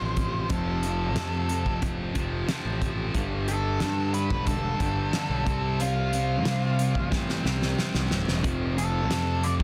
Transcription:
Already playing: F2 C3 F3 C5
0.02 A1
0.17 F2 C3, kick, closed hi-hat
0.50 F1 F2 C3 F3 A4, kick, closed hi-hat
0.82 F2 C3, closed hi-hat
1.15 F2 C3 F3, snare, closed hi-hat
1.49 F2 C3, closed hi-hat
1.66 D1, kick
1.82 F2 C3, kick, closed hi-hat
2.14 F1 F2 C3 F3, kick, closed hi-hat
2.19 F2
2.48 F2 C3 F3, snare, closed hi-hat
2.65 A1
2.82 F2 C3, kick, closed hi-hat
3.14 G1 G2 D3 G3, kick, closed hi-hat
3.48 G2 D3 A4, closed hi-hat
3.80 G2 D3 G3, snare, closed hi-hat
4.14 G2 D3 B4, closed hi-hat
4.30 E1, kick
4.47 G2 D3 A4, kick, closed hi-hat
4.80 G1 G2 D3 G3, kick, closed hi-hat
5.13 G2 D3 G3, snare, closed hi-hat
5.30 B1
5.46 C2 C3 G3 C4, kick, closed hi-hat
5.80 C3 G3 C4 F4, closed hi-hat
6.12 C3, closed hi-hat
6.45 C3 G3 C4, snare, closed hi-hat
6.79 C3 G3, closed hi-hat
6.95 A1, kick
7.11 C3 G3 C4, kick, snare
7.29 snare
7.44 C2 C3 G3 C4, snare
7.62 snare
7.78 C3 G3, snare
7.94 C2, snare
8.10 D1 C3 G3, snare
8.27 E1, snare
8.43 F1 F2 C3 F3, kick, closed hi-hat
8.76 F2 C3 A4, closed hi-hat
9.10 F2 C3 F3, snare, closed hi-hat
9.43 F2 C3 D5, closed hi-hat
9.60 D1, kick

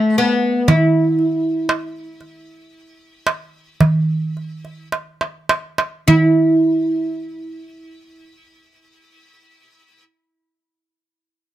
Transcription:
Already playing: A3
0.18 B3
0.68 E4, darbuka dum
1.19 darbuka ka
1.69 darbuka tek
2.21 darbuka ka
3.27 darbuka tek
3.81 darbuka dum
4.37 darbuka ka
4.65 darbuka ka
4.92 darbuka tek
5.21 darbuka ka
5.49 darbuka tek
5.78 darbuka ka
6.08 E4, darbuka dum

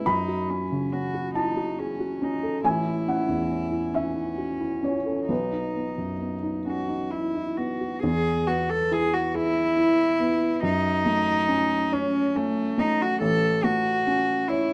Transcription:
0.06 F#2 D#4 B5
0.28 F#4
0.50 C#4
0.72 C#3
0.93 C#4 F#4
1.14 F#4
1.35 D#4 E4 A5
1.57 F#4
1.79 C#4 G#4
2.00 F#4
2.22 C#4 D#4
2.43 A4
2.64 A1 E4 G#5
2.86 E4
3.08 C#4 F#5
3.29 E2
3.50 C#4
3.71 E4
3.94 C#4 D#4 E5
4.16 E4
4.38 F#4
4.60 E4
4.83 C#4 C#5
5.06 A4
5.28 B1 D#4 B4
5.52 D#4
5.75 B3
5.98 F#2
6.20 B3
6.43 D#4
6.66 C#4 F#4
6.88 D#4
7.11 E4
7.35 D#4
7.57 B3 F#4
7.81 F#4
8.03 E2 G#4
8.47 B3 F#4
8.69 A4
8.91 E4 G#4
9.13 F#4
9.34 E4 G#4
9.77 E4
10.20 B3
10.63 F#2 D#4
11.05 A3
11.49 C#4
11.92 C#4 C#5
12.35 A3 C#4
12.78 A3 D#4
13.02 F#4
13.21 A1 A4
13.64 A3 F#4
14.07 C#4
14.48 E4 C#5

